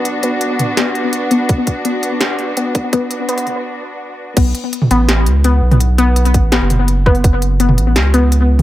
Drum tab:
CC |----------------|----------------|----------------|x---------------|
HH |x-x-x-x-x-x-x-x-|x-x-x-x-x-o-x-x-|x-x-xoo---------|x-x-x-x-x-x-x--o|
SD |--------o-------|--------o-------|----------------|--------o-------|
T2 |------o---------|----------------|------o---------|-----o---------o|
BD |----------------|o-o-----------o-|o---------------|o---------------|

CC |----------------|----------------|
HH |x-x-xox-x-x-x--o|x-x-x-x-x-x-x--o|
SD |--------o-------|--------o-------|
T2 |----------o-----|-----o---------o|
BD |------o-------o-|o---------------|